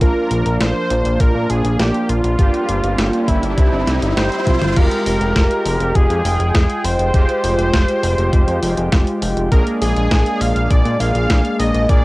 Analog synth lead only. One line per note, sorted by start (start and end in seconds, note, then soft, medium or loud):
0.02 0.57 A#4 loud
0.61 1.22 C5 loud
1.20 1.51 A#4 loud
1.50 1.81 G#4 loud
1.79 2.11 G4 medium
2.09 3.29 F4 loud
3.28 4.17 E4 medium
4.17 4.78 C5 loud
4.77 5.97 A#4 loud
5.95 6.86 G#4 loud
6.84 9.22 C5 loud
9.52 9.65 A#4 loud
9.82 10.42 G#4 loud
10.41 10.72 F5 loud
10.71 11.00 D5 loud
11.00 11.56 F5 loud
11.59 11.91 D#5 loud
11.89 12.05 D5 loud